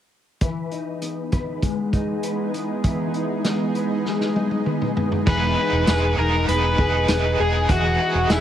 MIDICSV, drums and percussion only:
0, 0, Header, 1, 2, 480
1, 0, Start_track
1, 0, Key_signature, 4, "major"
1, 0, Tempo, 606061
1, 330, Time_signature, 4, 2, 24, 8
1, 6656, End_track
2, 0, Start_track
2, 0, Title_t, "Drums"
2, 324, Note_on_c, 9, 42, 61
2, 326, Note_on_c, 9, 36, 88
2, 404, Note_off_c, 9, 42, 0
2, 405, Note_off_c, 9, 36, 0
2, 566, Note_on_c, 9, 42, 37
2, 645, Note_off_c, 9, 42, 0
2, 806, Note_on_c, 9, 42, 54
2, 886, Note_off_c, 9, 42, 0
2, 1046, Note_on_c, 9, 42, 42
2, 1049, Note_on_c, 9, 36, 75
2, 1125, Note_off_c, 9, 42, 0
2, 1128, Note_off_c, 9, 36, 0
2, 1287, Note_on_c, 9, 36, 82
2, 1289, Note_on_c, 9, 42, 54
2, 1366, Note_off_c, 9, 36, 0
2, 1369, Note_off_c, 9, 42, 0
2, 1528, Note_on_c, 9, 42, 43
2, 1529, Note_on_c, 9, 36, 75
2, 1608, Note_off_c, 9, 36, 0
2, 1608, Note_off_c, 9, 42, 0
2, 1767, Note_on_c, 9, 42, 62
2, 1846, Note_off_c, 9, 42, 0
2, 2013, Note_on_c, 9, 42, 42
2, 2092, Note_off_c, 9, 42, 0
2, 2249, Note_on_c, 9, 42, 63
2, 2250, Note_on_c, 9, 36, 92
2, 2328, Note_off_c, 9, 42, 0
2, 2329, Note_off_c, 9, 36, 0
2, 2487, Note_on_c, 9, 42, 37
2, 2566, Note_off_c, 9, 42, 0
2, 2729, Note_on_c, 9, 38, 90
2, 2729, Note_on_c, 9, 42, 60
2, 2808, Note_off_c, 9, 42, 0
2, 2809, Note_off_c, 9, 38, 0
2, 2970, Note_on_c, 9, 42, 41
2, 3050, Note_off_c, 9, 42, 0
2, 3212, Note_on_c, 9, 38, 43
2, 3292, Note_off_c, 9, 38, 0
2, 3333, Note_on_c, 9, 38, 44
2, 3412, Note_off_c, 9, 38, 0
2, 3453, Note_on_c, 9, 48, 57
2, 3532, Note_off_c, 9, 48, 0
2, 3572, Note_on_c, 9, 48, 52
2, 3652, Note_off_c, 9, 48, 0
2, 3692, Note_on_c, 9, 47, 67
2, 3772, Note_off_c, 9, 47, 0
2, 3815, Note_on_c, 9, 45, 63
2, 3894, Note_off_c, 9, 45, 0
2, 3935, Note_on_c, 9, 43, 81
2, 4014, Note_off_c, 9, 43, 0
2, 4054, Note_on_c, 9, 43, 72
2, 4133, Note_off_c, 9, 43, 0
2, 4172, Note_on_c, 9, 36, 110
2, 4173, Note_on_c, 9, 49, 88
2, 4252, Note_off_c, 9, 36, 0
2, 4253, Note_off_c, 9, 49, 0
2, 4651, Note_on_c, 9, 42, 66
2, 4652, Note_on_c, 9, 38, 112
2, 4653, Note_on_c, 9, 54, 63
2, 4730, Note_off_c, 9, 42, 0
2, 4731, Note_off_c, 9, 38, 0
2, 4733, Note_off_c, 9, 54, 0
2, 5136, Note_on_c, 9, 42, 65
2, 5215, Note_off_c, 9, 42, 0
2, 5372, Note_on_c, 9, 36, 87
2, 5452, Note_off_c, 9, 36, 0
2, 5610, Note_on_c, 9, 42, 72
2, 5610, Note_on_c, 9, 54, 63
2, 5611, Note_on_c, 9, 38, 93
2, 5689, Note_off_c, 9, 42, 0
2, 5689, Note_off_c, 9, 54, 0
2, 5690, Note_off_c, 9, 38, 0
2, 6090, Note_on_c, 9, 42, 79
2, 6091, Note_on_c, 9, 36, 110
2, 6170, Note_off_c, 9, 36, 0
2, 6170, Note_off_c, 9, 42, 0
2, 6572, Note_on_c, 9, 38, 111
2, 6572, Note_on_c, 9, 42, 65
2, 6574, Note_on_c, 9, 54, 59
2, 6651, Note_off_c, 9, 42, 0
2, 6652, Note_off_c, 9, 38, 0
2, 6653, Note_off_c, 9, 54, 0
2, 6656, End_track
0, 0, End_of_file